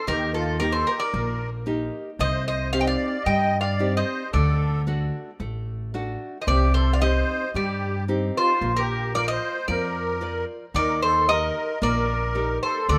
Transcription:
0.07 upright bass D#2, nylon-string guitar D#3, accordion G4, bouzouki A#4
0.34 accordion F4, bouzouki A4
0.60 nylon-string guitar A#3 D#4 G4, accordion G4, bouzouki A#4
0.72 accordion A4, bouzouki C5
0.87 accordion G4, bouzouki A#4
1.00 accordion A#4, bouzouki D5
1.14 upright bass A#1, nylon-string guitar A#3
1.66 nylon-string guitar A#3 D#4 G4
2.19 upright bass C2, nylon-string guitar C3, accordion C5, bouzouki D#5
2.46 accordion C5, bouzouki D#5
2.72 nylon-string guitar C4 D#4 G4, accordion C5, bouzouki F5
2.81 accordion D#5, bouzouki G5
2.86 accordion D5, bouzouki F5
3.23 upright bass G2, nylon-string guitar G3, accordion D#5, bouzouki G5
3.60 accordion D5, bouzouki F5
3.79 nylon-string guitar C4 D#4 G4
3.96 accordion C5, bouzouki D#5
4.32 upright bass D2, nylon-string guitar D3, accordion A4, bouzouki D5
4.87 nylon-string guitar A3 D4 F#4
5.40 upright bass A1, nylon-string guitar A3
5.94 nylon-string guitar A3 D4 F#4
6.42 accordion C5, bouzouki D#5
6.47 upright bass C2, nylon-string guitar C3, accordion G4, bouzouki D5
6.74 accordion A4, bouzouki C5
6.93 accordion D5, bouzouki F5
7.01 nylon-string guitar C4 D#4 G4, accordion C5, bouzouki D#5
7.54 upright bass G2, nylon-string guitar G3, accordion G4, bouzouki D5
8.08 nylon-string guitar C4 D#4 G4
8.36 accordion F4, bouzouki C5
8.61 upright bass A#1, nylon-string guitar A#3
8.77 accordion G4, bouzouki A#4
9.15 nylon-string guitar F4 A#4 F5, accordion A#4, bouzouki D5
9.28 accordion C5, bouzouki D#5
9.68 upright bass F2, nylon-string guitar F3, accordion A#4, bouzouki D5
10.21 nylon-string guitar F4 A#4 D5
10.74 upright bass D#2, nylon-string guitar D#3, accordion A#4, bouzouki D5
11.02 accordion A4, bouzouki C5
11.29 nylon-string guitar D#4 G4 A#4, accordion A#4, bouzouki D#5
11.82 upright bass A#1, nylon-string guitar A#3, accordion A#4, bouzouki D5
12.35 nylon-string guitar D#4 G4 A#4
12.63 accordion A4, bouzouki C5
12.89 upright bass D2, nylon-string guitar D3, accordion A4, bouzouki D5

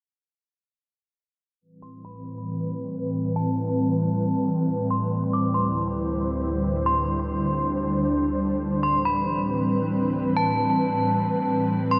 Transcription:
1.61 ambient pad A2 E3 G3 C4 B4
1.82 synth bell C6
2.05 synth bell B5
3.36 synth bell A5
4.91 synth bell C6
5.11 ambient pad D2 D3 E4 C5
5.33 synth bell D6
5.54 synth bell C6
6.86 ambient pad D4, synth bell C6
8.62 ambient pad A2 E3 C4 B4
8.83 synth bell C6
9.05 synth bell B5
10.37 synth bell A5
11.91 synth bell C6

